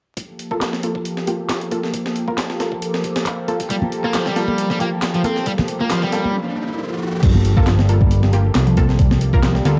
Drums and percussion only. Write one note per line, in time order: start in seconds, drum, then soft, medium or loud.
0.17 kick loud
0.17 closed hi-hat medium
0.39 closed hi-hat medium
0.51 kick medium
0.61 snare loud
0.61 clap loud
0.61 closed hi-hat medium
0.73 snare soft
0.83 closed hi-hat medium
0.95 kick medium
1.05 closed hi-hat medium
1.17 snare soft
1.27 closed hi-hat medium
1.49 snare loud
1.49 clap loud
1.49 closed hi-hat medium
1.61 closed hi-hat soft
1.71 kick medium
1.71 closed hi-hat medium
1.83 snare soft
1.94 kick loud
1.94 closed hi-hat medium
2.06 snare medium
2.16 closed hi-hat medium
2.28 kick medium
2.38 snare loud
2.38 clap loud
2.38 closed hi-hat medium
2.50 snare soft
2.60 snare soft
2.60 closed hi-hat medium
2.72 kick medium
2.82 closed hi-hat medium
2.94 snare medium
3.04 kick medium
3.04 closed hi-hat medium
3.16 snare loud
3.26 kick loud
3.26 clap loud
3.26 closed hi-hat medium
3.48 closed hi-hat medium
3.60 kick medium
3.60 closed hi-hat medium
3.70 kick loud
3.70 closed hi-hat medium
3.82 high conga medium
3.82 low conga medium
3.92 closed hi-hat medium
4.04 kick medium
4.14 snare loud
4.14 clap loud
4.14 closed hi-hat medium
4.26 snare soft
4.36 snare soft
4.36 closed hi-hat medium
4.48 kick medium
4.48 high conga medium
4.58 closed hi-hat medium
4.70 snare soft
4.80 closed hi-hat medium
5.02 snare loud
5.02 clap loud
5.02 closed hi-hat medium
5.14 closed hi-hat soft
5.24 kick medium
5.24 closed hi-hat medium
5.24 high conga medium
5.36 snare soft
5.46 kick loud
5.46 closed hi-hat medium
5.58 snare medium
5.58 high conga medium
5.58 low conga medium
5.68 closed hi-hat medium
5.80 kick medium
5.90 snare loud
5.90 clap loud
5.90 closed hi-hat medium
6.02 snare soft
6.12 snare soft
6.12 closed hi-hat medium
6.24 kick medium
6.24 high conga medium
7.23 kick loud
7.23 closed hi-hat medium
7.23 crash medium
7.35 high conga medium
7.35 low conga medium
7.45 closed hi-hat medium
7.57 kick medium
7.67 snare loud
7.67 clap loud
7.67 closed hi-hat medium
7.79 snare medium
7.89 closed hi-hat medium
8.01 kick medium
8.01 high conga medium
8.11 closed hi-hat medium
8.23 snare soft
8.33 closed hi-hat medium
8.55 snare loud
8.55 clap loud
8.55 closed hi-hat medium
8.67 closed hi-hat soft
8.77 kick medium
8.77 closed hi-hat medium
8.77 high conga medium
8.89 snare soft
8.99 kick loud
8.99 closed hi-hat medium
9.11 snare medium
9.11 high conga medium
9.11 low conga medium
9.21 closed hi-hat medium
9.33 kick medium
9.43 snare loud
9.43 clap loud
9.43 closed hi-hat medium
9.55 snare soft
9.65 snare soft
9.65 closed hi-hat medium